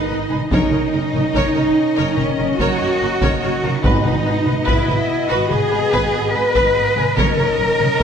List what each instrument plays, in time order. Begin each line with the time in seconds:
Already playing: trombone section D#3 B3, cello section D#4, french horn section D#4, violin section D#5
0.09 double bass section G#1, viola section B4, violin section B4
0.30 double bass section G#1, violin section G#4, viola section B4, taiko mid
0.50 double bass section F#1, trombone section D#3 C#4, cello section D#4, french horn section D#4, viola section A#4, violin section C#5 D#5, taiko
0.72 double bass section F#1, viola section A#4, violin section C#5, taiko mid
0.93 double bass section F#1, violin section A#4, viola section A#4
1.13 double bass section F#1, viola section A#4, violin section C#5, taiko mid
1.34 double bass section F#1, viola section A#4, violin section C#5, taiko
1.55 double bass section F#1, viola section A#4, violin section C#5, taiko mid
1.96 double bass section F#1, viola section A#4, violin section C#5
2.17 double bass section F#1, cello section C#4, french horn section C#4, viola section A#4, violin section C#5, taiko mid
2.38 double bass section F#1, viola section A#4, violin section A#4
2.58 double bass section F#1, cello section F#4, french horn section F#4, viola section A#4, violin section C#5, taiko
2.80 double bass section F#1, viola section A#4, violin section C#5
3.01 double bass section F#1, viola section A#4, violin section A#4
3.21 double bass section F#1, viola section A#4, violin section C#5, taiko
3.41 double bass section F#1, cello section F#4, french horn section F#4, viola section A#4, violin section C#5
3.63 double bass section F#1, viola section A#4, violin section A#4, taiko mid
3.82 timpani G#2, trombone section B2 B3, cello section D#4, french horn section D#4, viola section B4, violin section B4 D#5, taiko
3.86 double bass section G#1
4.05 double bass section G#1, viola section B4, violin section B4, taiko mid
4.26 double bass section G#1, violin section G#4, viola section B4
4.45 double bass section G#1, viola section B4, violin section B4, taiko mid
4.66 double bass section G#1, french horn section E4, cello section E4, viola section B4, violin section B4, taiko
4.87 double bass section G#1, viola section B4, violin section B4, taiko mid
5.28 double bass section G#1, french horn section F#4, cello section F#4, viola section B4, violin section B4
5.49 double bass section G#1, french horn section G#4, cello section G#4, viola section B4, violin section B4, taiko mid
5.70 double bass section G#1, violin section G#4, viola section B4
5.91 double bass section G#1, viola section B4, violin section B4, taiko
6.13 double bass section G#1, viola section B4, violin section B4
6.33 double bass section G#1, violin section G#4, cello section B4, french horn section B4, viola section B4
6.55 double bass section G#1, viola section B4, violin section B4, taiko
6.75 double bass section G#1, viola section B4, violin section B4
6.95 double bass section G#1, violin section G#4, viola section B4, taiko mid
7.15 double bass section F#1, trombone section D#3 C#4, french horn section A#4, cello section A#4, viola section A#4, violin section C#5 D#5, taiko
7.38 double bass section F#1, viola section A#4, violin section C#5, taiko mid
7.58 double bass section F#1, viola section A#4, violin section A#4
7.79 double bass section F#1, viola section A#4, violin section C#5, taiko mid
7.99 viola section A#4, taiko